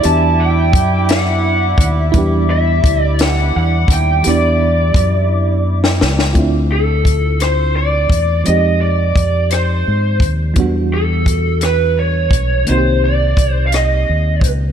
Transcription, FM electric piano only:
X:1
M:6/8
L:1/8
Q:3/8=57
K:Ephr
V:1 name="FM electric piano"
[B,DEG]6 | [G,B,DEG]6 | [E,B,DEG]6 | [A,CDEF]6 |
[F,_A,C_EG]6 | [E,^F,G,B,D^F]6 | [_E,_B,C_E^FG]6 |]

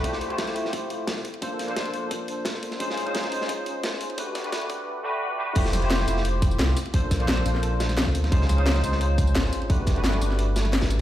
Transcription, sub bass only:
X:1
M:4/4
L:1/16
Q:1/4=174
K:F
V:1 name="Sub bass" clef=bass
F,,,6 F,,,6 C,,2 z2 | z2 B,,,4 B,,,6 z4 | _D,,6 D,,6 _A,,,2 z2 | z2 G,,,4 z8 z2 |
F,,,6 F,,,6 C,,2 z2 | z2 B,,,4 B,,,6- B,,, D,,3 | _D,,6 D,,6 _A,,,2 z2 | z2 G,,,4 G,,,8 A,,,2 |]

